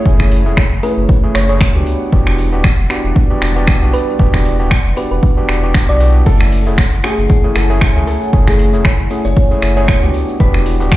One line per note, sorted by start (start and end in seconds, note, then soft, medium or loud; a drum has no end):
0.00 1.83 A3 medium
0.00 6.22 E4 medium
0.00 1.83 G#4 medium
0.00 1.83 C#5 medium
0.00 10.97 F#5 medium
0.05 0.47 F#1 loud
0.05 0.42 A3 medium
0.05 0.42 C#4 medium
0.05 0.42 E4 medium
0.05 0.42 G#4 medium
0.05 kick loud
0.20 finger snap medium
0.20 kick medium
0.31 open hi-hat loud
0.46 0.64 E1 loud
0.46 0.58 A3 medium
0.46 0.58 C#4 medium
0.46 0.58 E4 medium
0.46 0.58 G#4 medium
0.57 finger snap loud
0.57 kick loud
0.72 0.80 F#1 medium
0.83 1.20 A3 medium
0.83 1.20 C#4 medium
0.83 1.20 E4 medium
0.83 1.20 G#4 medium
0.83 1.33 B4 medium
0.83 open hi-hat medium
0.97 1.06 F#1 loud
1.09 kick loud
1.23 1.46 A3 medium
1.23 1.46 C#4 medium
1.23 1.46 E4 medium
1.23 1.46 G#4 medium
1.35 1.69 F#1 loud
1.35 1.44 C#5 medium
1.35 finger snap medium
1.35 open hi-hat loud
1.49 1.72 A3 loud
1.49 1.72 C#4 medium
1.49 1.72 E4 medium
1.49 1.72 G#4 loud
1.49 1.57 C#5 medium
1.61 finger snap loud
1.61 kick loud
1.75 1.83 C#2 medium
1.75 2.10 B3 medium
1.75 2.10 D4 medium
1.75 2.10 F#4 medium
1.75 2.10 G4 medium
1.87 6.22 G3 medium
1.87 6.22 B4 medium
1.87 6.22 D5 medium
1.87 open hi-hat medium
2.12 2.54 E1 loud
2.12 2.49 B3 medium
2.12 2.49 D4 medium
2.12 2.49 F#4 medium
2.12 2.49 G4 medium
2.12 kick loud
2.27 finger snap medium
2.38 open hi-hat loud
2.52 2.71 D1 loud
2.52 2.65 B3 medium
2.52 2.65 D4 medium
2.52 2.65 F#4 medium
2.52 2.65 G4 loud
2.64 finger snap loud
2.64 kick loud
2.78 2.87 E1 medium
2.90 3.27 B3 medium
2.90 3.27 D4 medium
2.90 3.27 F#4 medium
2.90 3.27 G4 medium
2.90 finger snap medium
2.90 open hi-hat medium
3.04 3.13 E1 loud
3.16 kick loud
3.30 3.53 B3 medium
3.30 3.53 D4 medium
3.30 3.53 F#4 medium
3.30 3.53 G4 medium
3.42 3.76 E1 loud
3.42 finger snap medium
3.42 open hi-hat loud
3.56 3.78 B3 medium
3.56 3.79 D4 medium
3.56 3.79 F#4 medium
3.56 3.79 G4 loud
3.67 finger snap loud
3.67 kick loud
3.82 3.90 B1 medium
3.82 4.17 B3 medium
3.82 4.17 D4 medium
3.82 4.17 F#4 medium
3.82 4.17 G4 medium
3.94 4.08 B4 loud
3.94 open hi-hat medium
4.19 4.61 E1 loud
4.19 4.56 B3 medium
4.19 4.56 D4 medium
4.19 4.56 F#4 medium
4.19 4.56 G4 medium
4.19 kick loud
4.34 finger snap medium
4.34 kick medium
4.45 open hi-hat loud
4.59 4.78 D1 loud
4.59 4.72 B3 medium
4.59 4.72 D4 medium
4.59 4.72 F#4 medium
4.59 4.72 G4 medium
4.71 finger snap loud
4.71 kick loud
4.85 4.94 E1 medium
4.97 5.34 B3 medium
4.97 5.34 D4 medium
4.97 5.34 F#4 medium
4.97 5.34 G4 medium
4.97 5.06 B4 medium
4.97 open hi-hat medium
5.11 5.20 E1 loud
5.11 5.19 B4 medium
5.23 kick loud
5.37 5.60 B3 medium
5.37 5.60 D4 medium
5.37 5.60 F#4 medium
5.37 5.60 G4 medium
5.49 5.83 E1 medium
5.49 finger snap medium
5.49 open hi-hat loud
5.63 5.85 B3 medium
5.63 5.85 D4 medium
5.63 5.85 F#4 medium
5.63 5.86 G4 medium
5.74 finger snap loud
5.74 kick loud
5.89 6.21 B1 medium
5.89 5.98 B3 medium
5.89 5.98 D4 medium
5.89 5.98 F#4 medium
5.89 5.98 G4 medium
5.89 6.26 D5 medium
6.00 6.23 B3 medium
6.00 6.23 D4 medium
6.00 6.24 F#4 medium
6.00 6.24 G4 medium
6.00 open hi-hat medium
6.26 6.68 F#1 loud
6.26 6.63 A3 medium
6.26 10.10 A3 medium
6.26 6.63 C#4 medium
6.26 10.97 E4 medium
6.26 6.63 E4 medium
6.26 6.61 A4 loud
6.26 6.63 A4 medium
6.26 10.10 C#5 medium
6.26 10.10 G#5 medium
6.26 kick loud
6.26 crash medium
6.26 shaker medium
6.40 finger snap medium
6.40 shaker soft
6.52 open hi-hat loud
6.66 6.84 E1 loud
6.66 6.79 A3 medium
6.66 6.79 C#4 medium
6.66 6.79 E4 medium
6.66 6.79 G#4 medium
6.66 shaker medium
6.78 finger snap loud
6.78 kick loud
6.78 shaker medium
6.92 7.01 F#1 medium
6.92 shaker soft
7.04 7.41 A3 medium
7.04 7.41 C#4 medium
7.04 7.41 E4 medium
7.04 7.50 G#4 loud
7.04 7.41 G#4 medium
7.04 finger snap medium
7.04 open hi-hat medium
7.18 7.27 F#1 loud
7.18 shaker medium
7.30 kick loud
7.30 shaker medium
7.44 7.66 A3 medium
7.44 7.66 C#4 medium
7.44 7.67 E4 medium
7.44 7.67 G#4 medium
7.44 shaker soft
7.56 7.89 F#1 loud
7.56 8.02 A4 loud
7.56 finger snap medium
7.56 open hi-hat loud
7.70 7.92 A3 medium
7.70 7.92 C#4 medium
7.70 7.92 E4 medium
7.70 7.92 G#4 loud
7.70 shaker medium
7.81 finger snap loud
7.81 kick loud
7.81 shaker medium
7.96 8.04 C#2 medium
7.96 8.30 A3 medium
7.96 8.30 C#4 medium
7.96 8.30 E4 medium
7.96 8.31 G#4 medium
7.96 shaker soft
8.07 8.42 A4 loud
8.07 open hi-hat loud
8.22 shaker medium
8.33 8.75 F#1 loud
8.33 8.70 A3 medium
8.33 8.70 C#4 medium
8.33 8.70 E4 medium
8.33 8.70 G#4 medium
8.33 kick loud
8.33 shaker medium
8.47 8.81 G#4 loud
8.47 finger snap medium
8.47 kick medium
8.47 shaker soft
8.59 open hi-hat loud
8.73 8.91 E1 loud
8.73 8.85 A3 medium
8.73 8.85 C#4 medium
8.73 8.86 E4 medium
8.73 8.86 G#4 loud
8.73 shaker medium
8.84 finger snap loud
8.84 kick loud
8.84 shaker medium
8.99 9.08 F#1 medium
8.99 shaker soft
9.11 9.47 A3 medium
9.11 9.47 C#4 medium
9.11 9.48 E4 medium
9.11 9.48 G#4 medium
9.11 open hi-hat loud
9.25 9.33 F#1 loud
9.25 9.70 C#5 loud
9.25 shaker medium
9.37 kick loud
9.37 shaker medium
9.51 9.73 A3 medium
9.51 9.73 C#4 medium
9.51 9.73 E4 medium
9.51 9.73 G#4 medium
9.51 shaker soft
9.62 9.96 F#1 loud
9.62 finger snap medium
9.62 open hi-hat loud
9.77 9.99 A3 loud
9.77 9.99 C#4 medium
9.77 9.99 E4 medium
9.77 9.99 G#4 loud
9.77 10.10 C#5 loud
9.77 shaker medium
9.88 finger snap loud
9.88 kick loud
9.88 shaker medium
10.03 10.11 C#2 medium
10.03 10.37 B3 medium
10.03 10.37 D4 medium
10.03 10.37 F#4 medium
10.03 10.37 G4 medium
10.03 shaker soft
10.14 10.97 G3 medium
10.14 10.97 B4 medium
10.14 10.97 D5 medium
10.14 open hi-hat loud
10.28 shaker medium
10.40 10.82 E1 loud
10.40 10.77 B3 medium
10.40 10.77 D4 medium
10.40 10.77 F#4 medium
10.40 10.77 G4 medium
10.40 10.75 B4 loud
10.40 kick loud
10.40 shaker medium
10.54 finger snap medium
10.54 shaker soft
10.66 open hi-hat loud
10.80 10.97 D1 loud
10.80 10.92 B3 medium
10.80 10.92 D4 medium
10.80 10.92 F#4 medium
10.80 10.92 G4 loud
10.80 shaker medium
10.92 finger snap loud
10.92 kick loud
10.92 shaker medium